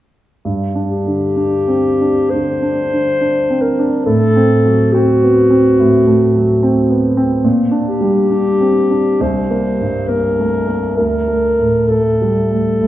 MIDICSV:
0, 0, Header, 1, 3, 480
1, 0, Start_track
1, 0, Key_signature, -2, "minor"
1, 0, Tempo, 907716
1, 238, Time_signature, 4, 2, 24, 8
1, 719, Tempo, 960000
1, 1199, Tempo, 884956
1, 1679, Tempo, 859599
1, 3119, Tempo, 839161
1, 4559, Tempo, 891530
1, 5999, Tempo, 918836
1, 6990, End_track
2, 0, Start_track
2, 0, Title_t, "Clarinet"
2, 0, Program_c, 0, 71
2, 476, Note_on_c, 0, 67, 49
2, 1192, Note_on_c, 0, 72, 62
2, 1200, Note_off_c, 0, 67, 0
2, 1909, Note_on_c, 0, 70, 46
2, 1918, Note_off_c, 0, 72, 0
2, 2151, Note_off_c, 0, 70, 0
2, 2154, Note_on_c, 0, 69, 62
2, 2641, Note_on_c, 0, 66, 58
2, 2649, Note_off_c, 0, 69, 0
2, 3834, Note_off_c, 0, 66, 0
2, 4313, Note_on_c, 0, 67, 55
2, 5053, Note_on_c, 0, 72, 51
2, 5061, Note_off_c, 0, 67, 0
2, 5519, Note_on_c, 0, 70, 53
2, 5527, Note_off_c, 0, 72, 0
2, 5995, Note_off_c, 0, 70, 0
2, 5999, Note_on_c, 0, 70, 54
2, 6472, Note_on_c, 0, 69, 43
2, 6480, Note_off_c, 0, 70, 0
2, 6990, Note_off_c, 0, 69, 0
2, 6990, End_track
3, 0, Start_track
3, 0, Title_t, "Grand piano"
3, 0, Program_c, 1, 0
3, 238, Note_on_c, 1, 43, 33
3, 325, Control_c, 1, 64, 127
3, 397, Note_on_c, 1, 62, 29
3, 560, Note_on_c, 1, 50, 25
3, 653, Note_off_c, 1, 62, 0
3, 721, Note_on_c, 1, 62, 28
3, 814, Note_off_c, 1, 50, 0
3, 877, Note_on_c, 1, 60, 25
3, 975, Note_off_c, 1, 62, 0
3, 1040, Note_off_c, 1, 60, 0
3, 1045, Note_on_c, 1, 62, 26
3, 1178, Note_off_c, 1, 43, 0
3, 1205, Note_on_c, 1, 50, 29
3, 1301, Note_off_c, 1, 62, 0
3, 1363, Note_on_c, 1, 62, 27
3, 1462, Note_off_c, 1, 50, 0
3, 1523, Note_on_c, 1, 50, 26
3, 1615, Note_off_c, 1, 62, 0
3, 1683, Note_on_c, 1, 62, 30
3, 1774, Note_off_c, 1, 50, 0
3, 1844, Note_on_c, 1, 60, 26
3, 1936, Note_off_c, 1, 62, 0
3, 2000, Note_off_c, 1, 60, 0
3, 2006, Note_on_c, 1, 62, 34
3, 2158, Note_on_c, 1, 45, 39
3, 2162, Note_off_c, 1, 62, 0
3, 2167, Control_c, 1, 64, 0
3, 2266, Control_c, 1, 64, 127
3, 2324, Note_on_c, 1, 60, 36
3, 2491, Note_on_c, 1, 54, 32
3, 2581, Note_off_c, 1, 60, 0
3, 2650, Note_on_c, 1, 60, 36
3, 2745, Note_off_c, 1, 54, 0
3, 2810, Note_on_c, 1, 59, 28
3, 2902, Note_off_c, 1, 60, 0
3, 2962, Note_on_c, 1, 60, 31
3, 2965, Note_off_c, 1, 59, 0
3, 3097, Note_off_c, 1, 45, 0
3, 3127, Note_on_c, 1, 45, 38
3, 3214, Note_off_c, 1, 60, 0
3, 3278, Note_on_c, 1, 57, 32
3, 3447, Note_on_c, 1, 54, 29
3, 3533, Note_off_c, 1, 57, 0
3, 3602, Note_on_c, 1, 60, 35
3, 3697, Note_off_c, 1, 54, 0
3, 3756, Note_on_c, 1, 59, 27
3, 3853, Note_off_c, 1, 60, 0
3, 3913, Note_on_c, 1, 60, 35
3, 3914, Note_off_c, 1, 59, 0
3, 4054, Note_off_c, 1, 45, 0
3, 4068, Note_on_c, 1, 46, 43
3, 4072, Note_off_c, 1, 60, 0
3, 4081, Control_c, 1, 64, 0
3, 4164, Control_c, 1, 64, 127
3, 4222, Note_on_c, 1, 62, 36
3, 4391, Note_on_c, 1, 55, 30
3, 4487, Note_off_c, 1, 62, 0
3, 4560, Note_on_c, 1, 62, 29
3, 4652, Note_off_c, 1, 55, 0
3, 4721, Note_on_c, 1, 60, 26
3, 4820, Note_off_c, 1, 62, 0
3, 4886, Note_on_c, 1, 62, 29
3, 4887, Note_off_c, 1, 60, 0
3, 5026, Note_off_c, 1, 46, 0
3, 5045, Note_on_c, 1, 36, 40
3, 5049, Note_off_c, 1, 62, 0
3, 5059, Control_c, 1, 64, 0
3, 5151, Control_c, 1, 64, 127
3, 5207, Note_on_c, 1, 58, 30
3, 5368, Note_on_c, 1, 43, 24
3, 5457, Note_off_c, 1, 58, 0
3, 5523, Note_on_c, 1, 58, 30
3, 5616, Note_off_c, 1, 43, 0
3, 5683, Note_on_c, 1, 57, 26
3, 5773, Note_off_c, 1, 58, 0
3, 5836, Note_on_c, 1, 58, 26
3, 5838, Note_off_c, 1, 57, 0
3, 5973, Note_off_c, 1, 36, 0
3, 5995, Note_on_c, 1, 38, 32
3, 5997, Note_off_c, 1, 58, 0
3, 6006, Control_c, 1, 64, 0
3, 6095, Control_c, 1, 64, 127
3, 6157, Note_on_c, 1, 57, 29
3, 6322, Note_on_c, 1, 45, 25
3, 6416, Note_off_c, 1, 57, 0
3, 6486, Note_on_c, 1, 57, 29
3, 6578, Note_off_c, 1, 45, 0
3, 6647, Note_on_c, 1, 55, 23
3, 6738, Note_off_c, 1, 57, 0
3, 6801, Note_on_c, 1, 57, 25
3, 6802, Note_off_c, 1, 55, 0
3, 6935, Note_off_c, 1, 38, 0
3, 6960, Note_on_c, 1, 45, 28
3, 6990, Note_off_c, 1, 45, 0
3, 6990, Note_off_c, 1, 57, 0
3, 6990, End_track
0, 0, End_of_file